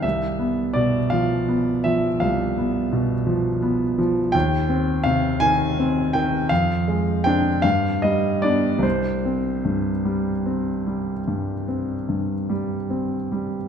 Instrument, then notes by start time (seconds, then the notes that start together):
grand piano
0.02 C2 E5
0.39 B3
0.74 B2 D5
1.10 F3 F5
1.48 B3
1.84 F3 E5
2.20 C2 F5
2.58 B3
2.92 B2
3.27 F3
3.62 B3
3.98 F3
4.32 D#2 G5
4.69 C4
5.04 C3 F5
5.40 D#3 G#5
5.79 C4
6.13 D#3 G5
6.49 F2 F5
6.88 G#3
7.24 C4 D4 G5
7.62 G2 F5
8.02 G3 D#5
8.42 B3 D4 D5
8.79 C2 C5
9.25 C4
9.65 G2
10.05 G3
10.46 C4
10.87 G3
11.28 G2
11.68 C4
12.09 G2
12.50 G3
12.90 C4
13.32 G3